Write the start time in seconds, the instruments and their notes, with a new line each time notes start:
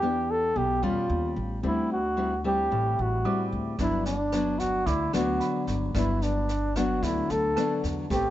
Already playing: upright bass E2, nylon-string guitar E3, flugelhorn G4
0.02 nylon-string guitar B3 D4 G4
0.31 flugelhorn A4
0.56 upright bass B1, nylon-string guitar B2, flugelhorn G4
0.83 upright bass E2, nylon-string guitar G3 C#4 F4, flugelhorn F4
1.10 upright bass D#2
1.36 upright bass A1
1.63 upright bass D2, nylon-string guitar D3 G3 C4 E4, flugelhorn E4
1.92 flugelhorn F#4
2.17 nylon-string guitar G3 C4 E4
2.44 nylon-string guitar G3 C4 E4, flugelhorn G4
2.71 upright bass A1, nylon-string guitar A2
2.99 upright bass A1, flugelhorn F#4
3.25 nylon-string guitar G3 C4 E4, grand piano D6
3.52 upright bass D2
3.79 upright bass G1, nylon-string guitar G2 F#3 B3 D4, flugelhorn E4, kick, snare
4.06 flugelhorn D4, snare
4.32 nylon-string guitar F#3 B3 D4, cross-stick, snare
4.59 flugelhorn F#4, kick, snare
4.86 upright bass D2, nylon-string guitar D3, flugelhorn E4, grand piano D6, kick, snare
5.13 upright bass D2, nylon-string guitar F#3 B3 D4, flugelhorn F#4, cross-stick, snare
5.40 grand piano B5, snare
5.67 upright bass G1, kick, snare
5.95 upright bass G1, nylon-string guitar G2 F#3 B3 D4, flugelhorn E4, kick, cross-stick, snare
6.22 flugelhorn D4, snare
6.49 snare
6.76 nylon-string guitar F#3 B3 D4, flugelhorn F#4, kick, cross-stick, snare
7.03 upright bass D2, nylon-string guitar D3, flugelhorn E4, kick, snare
7.30 upright bass D2, flugelhorn A4, snare
7.56 nylon-string guitar F#3 B3 D4, grand piano A5, cross-stick, snare
7.84 upright bass E2, kick, snare
8.10 upright bass A1, nylon-string guitar A3 C4 G4 B4, flugelhorn G4, kick, snare